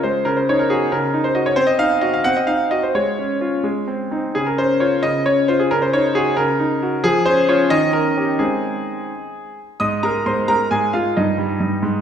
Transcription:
Already playing: C#3 F4
0.03 G#3 C5
0.25 C#3 A#4
0.37 C5
0.49 D#4 C#5
0.59 A#4
0.70 F#4 G#4
0.92 C#3 A#4
1.14 D#4
1.24 C5
1.35 F#4 D#5
1.46 C#5
1.56 C4 C5
1.67 D#5
1.79 D#4 F5
2.01 F#4 D#5
2.14 F5
2.24 C4 F#5
2.37 D#5
2.47 D#4 F5
2.71 F#4 D#5
2.83 C5
2.95 G#3 C#5
3.19 C#4
3.41 C#4 F4
3.64 G#3
3.88 C4
4.11 C4 D#4
4.35 C#3 G#4
4.46 A#4
4.58 C#4 C5
4.80 F4 C#5
5.03 C#3 D#5
5.26 C#4 C#5
5.48 F4 C5
5.60 G#4
5.71 C#3 A#4
5.82 C5
5.93 D#4 C#5
6.15 F#4 G#4
6.37 C#3 A#4
6.59 D#4
6.83 F#4
7.04 F3 G#4
7.26 C#4 C5
7.49 C#4 F4 C#5
7.70 D#3 D#5
7.93 C#4 A#4
8.17 C#4 G4
8.39 G#3 C4 D#4 G#4
9.80 G#2 D#5 D#6
10.03 G#3 A#4 A#5
10.26 G#2 C5 C6
10.48 G#3 A#4 A#5
10.71 G#2 G#4 G#5
10.93 G#3 F4 F5
11.17 G2 D#4 D#5
11.38 G3
11.60 G2
11.82 G#2

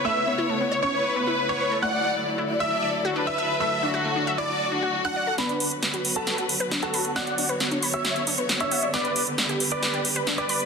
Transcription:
Already playing: C#3 A3 B3 E4 B4
0.05 A3 C#5 E5 E6
0.27 B3 C#5
0.38 E4
0.49 A3
0.61 B3
0.72 C#5
0.82 C#4 C#5 C#6
0.94 B4
1.16 B3
1.27 E4
1.49 B3 C#5 C#6
1.60 B4
1.71 A4
1.82 D3 F#3 A3 A4 D5 F#5 F#6
2.38 E4
2.49 D5
2.60 E5 E6
2.83 D5
3.05 F#4
3.16 D4 B4
3.27 D5 E5 E6
3.38 E5
3.60 A3 E5 E6
3.83 D4 F#4
3.94 F#4
4.05 A3
4.16 D4
4.27 E5
4.38 E4 D5 D6
4.49 F#4
4.72 D4
4.83 F#4
5.05 D4 F#5 F#6
5.16 D5
5.27 A4
5.38 D3 F#3 B3 D4 F#4 B4 B5, snare, closed hi-hat
5.49 closed hi-hat
5.60 open hi-hat
5.71 closed hi-hat
5.83 snare, closed hi-hat
5.94 F#4, closed hi-hat
6.05 open hi-hat
6.16 F#4 A4 A5, closed hi-hat
6.27 snare, closed hi-hat
6.38 F#5, closed hi-hat
6.49 open hi-hat
6.60 B4, closed hi-hat
6.71 D4, snare, closed hi-hat
6.83 F#4 A4 F#5 A5, closed hi-hat
6.94 B5, open hi-hat
7.05 closed hi-hat
7.16 B3 C#5 D5 F#5 F#6, snare, closed hi-hat
7.27 closed hi-hat
7.38 D4, open hi-hat
7.49 B4, closed hi-hat
7.60 B3, snare, closed hi-hat
7.71 D4, closed hi-hat
7.83 B5, open hi-hat
7.94 F#4 C#5 E5 E6, closed hi-hat
8.05 snare, closed hi-hat
8.16 closed hi-hat
8.27 D4, open hi-hat
8.38 B4, closed hi-hat
8.49 snare, closed hi-hat
8.60 D4 C#5 E5 E6, closed hi-hat
8.71 F#5, open hi-hat
8.83 D5, closed hi-hat
8.94 G3 B3 G4 B4 D5 D6, snare, closed hi-hat
9.05 closed hi-hat
9.16 open hi-hat
9.27 closed hi-hat
9.38 snare, closed hi-hat
9.49 G4, closed hi-hat
9.60 open hi-hat
9.71 B4 D5 D6, closed hi-hat
9.83 snare, closed hi-hat
9.94 G5, closed hi-hat
10.05 open hi-hat
10.16 B4, closed hi-hat
10.27 D4, snare, closed hi-hat
10.38 B4 D5 G5 D6, closed hi-hat
10.49 B5, open hi-hat
10.60 closed hi-hat

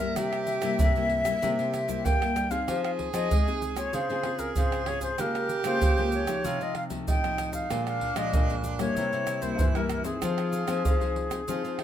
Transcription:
Already playing: G2 A#4 E5
0.00 G3 A#3 E4
0.16 C3 G4, pandeiro, tamborim, shaker, surdo
0.33 pandeiro, tamborim, shaker
0.47 pandeiro, shaker
0.62 C3 G3 A#3 E4, pandeiro, tamborim, shaker
0.79 G2 C3, pandeiro, shaker, surdo
0.96 G3 A#3 E4, pandeiro, shaker, surdo
1.10 pandeiro
1.25 G3 A#3 E4, pandeiro, tamborim, shaker, surdo
1.42 C3 G3 A#3 E4 G4, pandeiro, shaker, surdo
1.59 C3, pandeiro, shaker
1.74 pandeiro, tamborim, shaker
1.88 G3 A#3 E4, pandeiro, shaker, surdo
2.05 G2 A#3 G5, pandeiro, shaker, surdo
2.21 G3 A#3 E4, pandeiro, tamborim, shaker
2.36 G3, pandeiro, tamborim, shaker
2.51 C4 D#4 G#4 F5, pandeiro, shaker, surdo
2.68 F3 G#4, pandeiro, tamborim, shaker, surdo
2.84 F5, pandeiro, tamborim, shaker
2.99 pandeiro, surdo
3.13 F3 C4 D#4 G#4 D#5, pandeiro, tamborim, shaker
3.31 C3 G#3, pandeiro, shaker, surdo
3.47 C4 D#4 G#4, pandeiro, shaker, surdo
3.62 pandeiro, shaker
3.77 C4 F4 G#4 C#5, pandeiro, tamborim, shaker, surdo
3.93 C#3 G#4 C5, pandeiro, shaker, surdo
4.10 C#3 C4 F4 G#4, pandeiro, shaker
4.23 C4 F4 G#4, pandeiro, tamborim
4.39 A#4, pandeiro, shaker, surdo
4.56 G#2 C#3 C5, pandeiro, shaker, surdo
4.72 pandeiro, tamborim, shaker
4.86 C4 F4 G#4 C#5, pandeiro, tamborim
5.01 C5, pandeiro, shaker, surdo
5.18 C#3 G#3 A#3 F4 G4 A#4, pandeiro, tamborim, shaker, surdo
5.35 pandeiro, tamborim, shaker
5.49 pandeiro, shaker
5.64 C#3 G#3 A#3 F4 C5, pandeiro, tamborim, shaker
5.82 C#3, pandeiro, shaker, surdo
5.97 G#3 A#3 F4, pandeiro, shaker, surdo
6.12 C#5, pandeiro, shaker
6.27 F3 A3 D#4, pandeiro, tamborim, shaker, surdo
6.44 C3 F4, pandeiro, shaker, surdo
6.61 C3 D#5, pandeiro, shaker
6.75 F5, pandeiro, tamborim
6.90 F3 A3 D#4, pandeiro, shaker, surdo
7.07 A2 C3 D#4 G5, pandeiro, shaker, surdo
7.24 F3 A3 D#4, pandeiro, tamborim, shaker
7.38 pandeiro, tamborim, shaker
7.53 F5, pandeiro, shaker, surdo
7.70 A#2 F3 G#3 D4, pandeiro, tamborim, shaker, surdo
7.87 F5, pandeiro, tamborim, shaker
8.01 pandeiro, surdo
8.16 A#2 F3 G#3 D4 D#5, pandeiro, tamborim, shaker
8.33 F2 A#2, pandeiro, shaker, surdo
8.49 F3 G#3 D4, pandeiro, shaker, surdo
8.64 pandeiro, shaker
8.79 G3 A#3 E4 C#5, pandeiro, tamborim, shaker, surdo
8.96 C3 E4, pandeiro, shaker, surdo
9.13 C3, pandeiro, shaker
9.27 pandeiro, tamborim, shaker
9.41 G3 A#3 E4 C5, pandeiro, shaker, surdo
9.59 G2 E3, pandeiro, shaker, surdo
9.75 G3 A#3 E4 A#4, pandeiro, tamborim, shaker
9.89 pandeiro, tamborim, shaker
10.04 C4 D#4 G#4, pandeiro, shaker, surdo
10.16 E4
10.22 F3 F4, pandeiro, tamborim, shaker, surdo
10.38 pandeiro, tamborim, shaker
10.53 pandeiro, shaker
10.67 F3 C4 D#4 G#4, pandeiro, tamborim, shaker
10.84 C3 F3, pandeiro, shaker, surdo
11.00 C4 D#4 G#4, pandeiro, shaker, surdo
11.16 pandeiro
11.30 C4 D#4 G#4, pandeiro, tamborim, shaker, surdo
11.48 F3 C4 D#4 F4 G#4, pandeiro, shaker, surdo
11.64 F3, pandeiro, shaker
11.79 D#4, pandeiro, tamborim

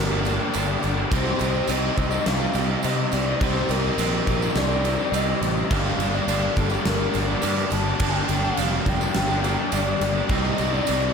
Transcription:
Already playing: G1 G2 D3 G3 A#3 D4 G4 A#4
0.11 G3 A#3 D4 G4, tambourine
0.25 G3 A#3 D4 G4, tambourine, crash
0.41 G3 A#3 D4 G4
0.54 G1 G2 D3 G3 A#3 D4 G4, tambourine, crash
0.68 G3 A#3 D4 G4, tambourine
0.83 G1 G3 A#3 D4, tambourine, crash
0.87 G4
0.99 G3 A#3 D4 G4
1.11 C2 C3 G3 C4 D#4 G4 C5, kick, crash
1.26 C4 D#4 G4, tambourine
1.39 C2 G3 C4, tambourine, crash
1.43 D#4 G4
1.54 C4 D#4 G4, tambourine
1.67 C2 C3 G3 C4 D#4 G4 D#5, tambourine, crash
1.96 C2 G3 C4 D#4 G4, kick, tambourine, crash
2.11 C4 D#4 G4, tambourine
2.26 C2 F5, snare, crash
2.40 C4 D#4 G4, tambourine
2.53 C2 G3 C4 D#4 G4, tambourine, crash
2.69 C4 D#4 G4
2.83 C3 G3 C4 D#4 G4 D#5, tambourine, crash
2.97 C4 D#4 G4, tambourine
3.12 C2 G3 C4 D#4 G4 D5, tambourine, crash
3.28 C4 D#4 G4
3.41 C2 C3 G3 C4 D#4 G4 C5, kick, tambourine, crash
3.55 C4 D#4 G4, tambourine
3.69 C2 G3 C4 A#4, tambourine, crash
3.73 D#4 G4
3.82 C4 D#4 G4, tambourine
3.87 C4 D#4 G4
3.98 A#1 C3 G3, tambourine, crash
4.02 C4 D#4 G4
4.27 A#1 G3 C4 D#4 G4, kick, tambourine, crash
4.42 C4 D#4 G4, tambourine
4.55 C2 D5, snare, tambourine, crash
4.71 C4 D#4 G4, tambourine
4.84 G3 C4 D#4 G4, tambourine, crash
5.00 C4 D#4 G4, tambourine
5.12 C2 C3 G3 C4 D#5, tambourine, crash
5.16 D#4 G4
5.28 C4 D#4 G4, tambourine
5.41 A1 G3 C4 D#4 G4, tambourine, crash
5.57 C4 D#4 G4, tambourine
5.70 G1 G2 D3 G3 A#3 D4 F5, kick, crash
5.74 G4
5.86 G3 A#3 D4 G4, tambourine
5.98 G1 G3 A#3 D4, tambourine, crash
6.02 G4
6.14 G3 A#3 D4 G4 D5, tambourine
6.27 G1 G2 D3 G3 A#3 D4 G4, tambourine, crash
6.56 G1 G3 A#3 D4 G4 A4, kick, tambourine, crash
6.70 A#3 D4 G4, tambourine
6.74 G3
6.85 G1 A#4, snare, crash
6.99 G3 A#3 D4 G4, tambourine
7.14 G1 G3 A#3 D4 G4, tambourine, crash
7.28 A#3 D4 G4 D5
7.33 G3 A#3
7.41 G2 D3 G3, tambourine, crash
7.46 G3 A#3 D4 G4
7.56 G3 A#3 D4 G4, snare, tambourine
7.70 G1 G3 A#3 A5, tambourine, crash
7.74 D4 G4
7.85 A#3 D4 G4
7.89 G3 A#3 D4
8.00 G1 G2 D3 G3 A#3 D4 G4 G5, kick, crash
8.15 G3 A#3 D4 G4, tambourine
8.28 G1 G3 A#3 D4 G4, tambourine, crash
8.44 G3 A#3 D4 G4 F5, tambourine
8.57 F1 G2 D3 G3 A#3, tambourine, crash
8.62 D4 G4
8.73 tambourine
8.86 F1 G3 A#3 D4 G4 G5, kick, tambourine, crash
9.01 G3 A#3 D4 G4, tambourine
9.14 G1, snare, crash
9.30 G3 A#3 D4 G4, tambourine
9.44 G3 A#3 D4 G4, tambourine, crash
9.60 G3 A#3 D4 G4
9.72 G1 G2 D3 G3 A#3 D4 G4 D5, tambourine, crash
9.87 G3 A#3 D4 G4, tambourine
10.01 G1 G3 A#3 D4 G4, tambourine, crash
10.15 G3 A#3 D4 G4
10.29 C2 C3 G3 C4 D#4 G4 D#5, kick, crash
10.44 C4 D#4 G4, tambourine
10.58 C2 G3 C4 D#4 G4, tambourine, crash
10.73 C4 D#4 G4 D5, tambourine
10.87 C2 C3 G3 C4 D#4 G4, tambourine, crash
11.02 tambourine

